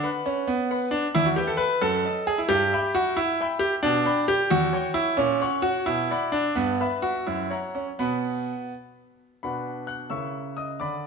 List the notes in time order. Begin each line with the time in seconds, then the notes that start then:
0.04 B4 F#5 B5
0.26 C#4
0.48 B3
0.71 B4 F#5 B5
0.91 D4
1.15 E2 E4
1.26 F#4
1.36 G4 B4 E5 G5
1.47 A4
1.57 B4
1.81 F#2 A4
2.05 D#5 A5
2.27 G#4
2.38 E4
2.49 G2 G4
2.73 E5 G5 B5
2.95 F#4
3.17 E4
3.41 E5 G5 B5
3.59 G4
3.83 B2 D4
4.06 D5 G5 B5
4.28 G4
4.50 E2 F#4
4.73 C#5 G5 C#6
4.94 E4
5.17 A#2 C#4
5.41 C#5 F#5 C#6
5.62 F#4
5.86 B2 E4
6.11 D5 F#5 B5
6.32 D4
6.56 G2 B3
6.80 B4 E5 B5
7.02 F#4
7.27 F#2 E4
7.50 C#5 F#5 A#5
7.75 C#4
7.99 B2 B3 F#5 B5
9.43 B2 D4 F#4 B4 F#5 B5
9.87 F#5 F#6
10.10 C#3 C#4 E4 A#4 E5 C#6 E6
10.57 D#5 D#6
10.80 D3 D5 B5 D6